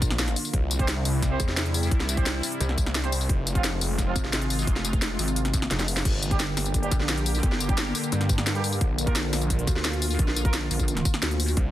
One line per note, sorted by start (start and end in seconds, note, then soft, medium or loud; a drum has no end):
0.00 0.35 A#1 loud
0.00 0.50 D3 medium
0.00 0.50 A#3 medium
0.00 0.51 F4 medium
0.00 kick loud
0.00 closed hi-hat medium
0.00 tambourine medium
0.10 snare soft
0.19 snare loud
0.19 closed hi-hat medium
0.28 snare soft
0.28 closed hi-hat soft
0.36 open hi-hat medium
0.36 tambourine medium
0.45 tambourine soft
0.54 1.04 C2 loud
0.54 3.27 C3 medium
0.54 3.27 G3 medium
0.54 3.27 E4 medium
0.54 kick loud
0.54 closed hi-hat medium
0.71 closed hi-hat medium
0.71 tambourine medium
0.79 0.88 C4 medium
0.79 0.88 G4 medium
0.79 0.88 C5 medium
0.79 kick loud
0.79 closed hi-hat soft
0.88 snare loud
0.88 closed hi-hat medium
1.05 1.38 C2 loud
1.05 open hi-hat medium
1.05 tambourine medium
1.22 kick medium
1.22 snare soft
1.22 closed hi-hat medium
1.22 tambourine soft
1.31 1.39 C4 medium
1.31 1.39 G4 medium
1.31 1.39 C5 medium
1.40 1.90 E2 medium
1.40 kick loud
1.40 closed hi-hat medium
1.40 tambourine medium
1.48 snare soft
1.57 snare loud
1.57 closed hi-hat medium
1.66 closed hi-hat soft
1.74 open hi-hat medium
1.74 tambourine medium
1.83 tambourine soft
1.91 2.42 C2 loud
1.91 kick loud
1.91 closed hi-hat medium
2.00 snare soft
2.09 closed hi-hat medium
2.09 tambourine medium
2.17 2.25 C4 medium
2.17 2.25 G4 medium
2.17 2.25 C5 medium
2.17 kick loud
2.17 closed hi-hat soft
2.26 snare loud
2.26 closed hi-hat medium
2.43 open hi-hat medium
2.43 tambourine medium
2.52 closed hi-hat soft
2.60 3.28 C2 loud
2.60 closed hi-hat medium
2.60 tambourine soft
2.69 snare soft
2.78 kick loud
2.78 closed hi-hat medium
2.78 tambourine medium
2.86 snare soft
2.95 snare loud
2.95 closed hi-hat medium
3.03 3.12 C4 medium
3.03 3.12 G4 medium
3.03 3.12 C5 loud
3.03 snare soft
3.03 closed hi-hat soft
3.12 open hi-hat medium
3.12 tambourine medium
3.21 tambourine soft
3.29 3.80 F1 medium
3.29 6.03 C3 medium
3.29 6.03 G#3 medium
3.29 6.03 F4 medium
3.29 kick loud
3.29 closed hi-hat loud
3.47 closed hi-hat medium
3.47 tambourine medium
3.55 3.63 F3 medium
3.55 3.63 C4 medium
3.55 3.63 F4 medium
3.55 kick loud
3.55 closed hi-hat soft
3.64 snare loud
3.64 closed hi-hat medium
3.81 4.14 F1 loud
3.81 open hi-hat medium
3.81 tambourine medium
3.98 kick medium
3.98 snare soft
3.98 closed hi-hat loud
3.98 tambourine soft
4.07 4.15 F3 medium
4.07 4.15 C4 medium
4.07 4.15 F4 medium
4.16 4.66 G#1 loud
4.16 kick loud
4.16 closed hi-hat medium
4.16 tambourine medium
4.24 snare soft
4.33 snare loud
4.33 closed hi-hat loud
4.42 closed hi-hat soft
4.50 open hi-hat medium
4.50 tambourine medium
4.59 tambourine soft
4.67 5.18 F1 loud
4.67 kick loud
4.67 closed hi-hat loud
4.76 snare soft
4.85 closed hi-hat medium
4.85 tambourine medium
4.93 kick loud
4.93 closed hi-hat soft
5.02 snare loud
5.02 closed hi-hat loud
5.19 5.69 G#1 loud
5.19 open hi-hat medium
5.19 tambourine medium
5.28 closed hi-hat soft
5.28 tambourine soft
5.36 closed hi-hat loud
5.36 tambourine soft
5.45 snare soft
5.45 closed hi-hat soft
5.54 kick loud
5.54 closed hi-hat medium
5.54 tambourine medium
5.62 snare soft
5.71 6.04 F1 medium
5.71 snare medium
5.71 closed hi-hat loud
5.79 snare medium
5.79 closed hi-hat soft
5.88 open hi-hat medium
5.88 tambourine medium
5.97 snare medium
5.97 tambourine soft
6.05 6.56 G1 loud
6.05 11.53 D3 medium
6.05 11.53 A#3 medium
6.05 8.78 G4 medium
6.05 kick loud
6.05 closed hi-hat loud
6.05 crash loud
6.23 closed hi-hat medium
6.23 tambourine medium
6.31 6.39 G3 medium
6.31 6.39 D4 medium
6.31 6.39 G4 medium
6.31 kick loud
6.31 closed hi-hat soft
6.40 snare loud
6.40 closed hi-hat loud
6.57 6.90 G1 loud
6.57 snare soft
6.57 open hi-hat medium
6.57 tambourine medium
6.66 closed hi-hat soft
6.66 tambourine soft
6.74 kick medium
6.74 closed hi-hat loud
6.74 tambourine soft
6.83 6.91 G3 medium
6.83 6.91 D4 medium
6.83 6.91 G4 medium
6.83 closed hi-hat soft
6.91 7.42 A#1 loud
6.91 kick loud
6.91 closed hi-hat medium
6.91 tambourine medium
7.00 snare soft
7.09 snare loud
7.09 closed hi-hat medium
7.17 closed hi-hat soft
7.26 open hi-hat medium
7.26 tambourine medium
7.35 tambourine soft
7.43 7.94 G1 loud
7.43 kick loud
7.43 closed hi-hat medium
7.52 snare soft
7.60 closed hi-hat medium
7.60 tambourine medium
7.69 7.77 G3 medium
7.69 7.77 D4 medium
7.69 7.77 G4 medium
7.69 kick loud
7.69 closed hi-hat soft
7.78 snare loud
7.78 closed hi-hat medium
7.95 open hi-hat medium
7.95 tambourine medium
8.04 closed hi-hat soft
8.04 tambourine soft
8.12 8.80 G2 loud
8.12 closed hi-hat medium
8.12 tambourine soft
8.21 snare soft
8.21 closed hi-hat soft
8.29 kick loud
8.29 closed hi-hat medium
8.29 tambourine medium
8.38 snare medium
8.47 snare loud
8.47 closed hi-hat medium
8.55 8.63 G3 medium
8.55 8.63 D4 medium
8.55 8.63 G4 loud
8.55 closed hi-hat soft
8.64 open hi-hat medium
8.64 tambourine medium
8.73 tambourine soft
8.81 9.31 A#1 loud
8.81 11.54 F4 medium
8.81 kick loud
8.81 closed hi-hat medium
8.98 closed hi-hat medium
8.98 tambourine medium
9.07 9.15 A#3 medium
9.07 9.15 F4 medium
9.07 9.15 A#4 medium
9.07 kick loud
9.07 closed hi-hat soft
9.16 snare loud
9.16 closed hi-hat medium
9.33 9.66 A#1 loud
9.33 snare medium
9.33 open hi-hat medium
9.33 tambourine medium
9.42 closed hi-hat soft
9.42 tambourine soft
9.50 kick medium
9.50 closed hi-hat medium
9.50 tambourine soft
9.59 closed hi-hat soft
9.67 10.18 D2 loud
9.67 kick loud
9.67 closed hi-hat medium
9.67 tambourine medium
9.76 snare soft
9.85 snare loud
9.85 closed hi-hat medium
9.93 closed hi-hat soft
10.02 open hi-hat medium
10.02 tambourine medium
10.11 tambourine soft
10.19 10.69 A#1 loud
10.19 kick loud
10.19 closed hi-hat medium
10.28 snare soft
10.36 closed hi-hat medium
10.36 tambourine medium
10.45 10.53 A#3 medium
10.45 10.53 F4 medium
10.45 10.53 A#4 medium
10.45 kick loud
10.45 closed hi-hat soft
10.54 snare loud
10.54 closed hi-hat medium
10.71 11.04 A#1 loud
10.71 open hi-hat medium
10.71 tambourine medium
10.79 kick medium
10.79 closed hi-hat soft
10.79 tambourine soft
10.88 closed hi-hat medium
10.88 tambourine soft
10.97 snare soft
10.97 closed hi-hat soft
11.05 kick loud
11.05 closed hi-hat medium
11.05 tambourine medium
11.14 snare medium
11.22 11.56 D2 loud
11.22 snare loud
11.22 closed hi-hat medium
11.31 closed hi-hat soft
11.40 open hi-hat medium
11.40 tambourine medium
11.48 tambourine soft
11.57 11.71 C2 loud
11.57 11.71 C3 medium
11.57 11.71 G3 medium
11.57 11.71 E4 medium
11.57 kick loud
11.57 closed hi-hat medium